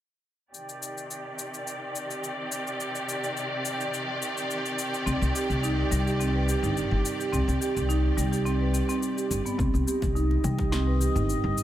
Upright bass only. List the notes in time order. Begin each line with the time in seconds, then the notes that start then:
5.06 C2
5.21 C2
5.50 C2
5.91 C2
6.63 G1
6.91 G1
7.33 C2
7.48 C2
7.76 C2
8.17 C2
9.31 G1
9.59 C2
9.74 C2
10.02 C2
10.44 C2
11.15 G1
11.44 G1